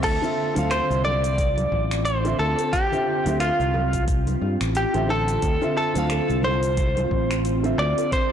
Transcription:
Already playing: D3 C4 F4 G5
0.03 D2 C4 F4 A4, kick, closed hi-hat, crash, shaker
0.22 D3 C4 F4 E5, low conga, shaker
0.55 D2 D3 C4 F4 F5, closed hi-hat, high conga, shaker
0.71 C5, finger snap, closed hi-hat, high bongo, shaker
0.90 C2, shaker
1.04 D5, high bongo, high conga
1.24 closed hi-hat, shaker
1.38 kick, closed hi-hat, shaker
1.57 closed hi-hat, high conga, shaker
1.72 A1, kick
1.91 finger snap, closed hi-hat, shaker
2.05 C5, closed hi-hat, shaker
2.25 D3 C4 F4 E5, closed hi-hat, shaker
2.38 D2 A4, high bongo
2.59 closed hi-hat, high bongo, shaker
2.73 G4, kick, closed hi-hat, shaker
2.92 D3 C4 F4 E5, low conga, shaker
3.26 D2 D3 C4 F4 E5, closed hi-hat, high conga, shaker
3.40 F4, finger snap, closed hi-hat, high bongo, shaker
3.60 C2, shaker
3.74 high bongo, high conga
3.93 kick, closed hi-hat, shaker
4.08 kick, closed hi-hat, shaker
4.27 closed hi-hat, high conga, shaker
4.41 G2, high bongo
4.61 A1, finger snap, closed hi-hat, shaker
4.75 G4, closed hi-hat, shaker
4.94 A1 D3 C4 F4 E5, closed hi-hat, shaker
5.08 D3 C4 F4 A4 G5
5.28 closed hi-hat, shaker
5.42 D2, kick, closed hi-hat, shaker
5.61 D3 C4 F4 E5, low conga, shaker
5.77 A4
5.94 D2 D3 C4 F4 F5, closed hi-hat, high conga, shaker
6.10 finger snap, closed hi-hat, high bongo, shaker
6.30 C2, shaker
6.43 C5, high bongo, high conga
6.63 closed hi-hat, shaker
6.77 kick, closed hi-hat, shaker
6.97 closed hi-hat, high conga, shaker
7.11 A1, kick
7.31 finger snap, closed hi-hat, shaker
7.45 closed hi-hat, shaker
7.63 D3 C4 F4 E5, closed hi-hat, shaker
7.78 D2 D5, high bongo
7.98 closed hi-hat, high bongo, shaker
8.12 C5, kick, closed hi-hat, shaker

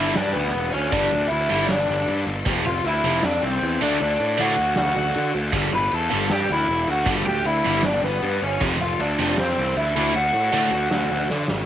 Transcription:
Already playing: G1 G2 D3 G3 E4 E5
0.15 G2 D4 D5, snare, crash
0.33 D2 B3 B4, crash
0.54 E1, crash
0.72 D2 C#4 C#5, crash
0.91 G1 G2 D3 G3 D4 D5, kick, crash
1.12 D2, crash
1.28 E4 E5, crash
1.32 D2
1.50 G1 G2 D3 G3, crash
1.67 G1 D4 D5, snare, crash
1.88 G1, crash
2.07 G2, crash
2.27 G1, crash
2.46 F1 F2 C3 F3, kick, crash
2.65 F1 F4 F5, crash
2.85 D2 E4 E5, crash
3.04 F1 F2 C3 F3, crash
3.23 F2 D4 D5, snare, crash
3.42 C2 C4 C5, crash
3.61 E2, crash
3.80 D2 D3 A3 D4 D5, crash
4.00 D2 D4 D5, crash
4.18 A2, crash
4.37 A2 D3 A3 D4 F#5, crash
4.41 F#4
4.57 D2, crash
4.76 D2 F#4 F#5, snare, crash
4.95 D2, crash
5.14 D3, crash
5.34 D2, crash
5.53 G1 G2 D3 G3, kick, crash
5.72 G1 B4 B5, crash
5.91 E2 A4 A5, crash
6.10 G1 G2 D3 G3, crash
6.30 G2 G4 G5, snare, crash
6.49 D2 E4 E5, crash
6.68 E1, crash
6.87 D2 F#4 F#5, crash
7.06 G1 G2 D3 G3, kick, crash
7.25 D2 G4 G5, crash
7.45 D2 E4 E5, crash
7.64 G1 G2 D3 G3, crash
7.83 G1 D4 D5, snare, crash
8.03 G1 B3 B4, crash
8.22 G2, crash
8.42 G1 C#4 C#5, crash
8.61 F1 F2 C3 F3, kick, crash
8.80 F1 F4 F5, crash
8.99 D2 D4 D5, crash
9.19 F1 F2 C3 F3, crash
9.38 F2 C4 C5, snare, crash
9.57 C2, crash
9.76 D2 E4 E5, crash
9.96 D2 D3 A3 D4, crash
10.15 D2 F#4 F#5, crash
10.33 A2, crash
10.53 A2 D3 A3 D4, crash
10.71 D2, crash
10.91 D2, snare, crash
11.10 D2, crash
11.30 D3, snare
11.48 G#1, snare

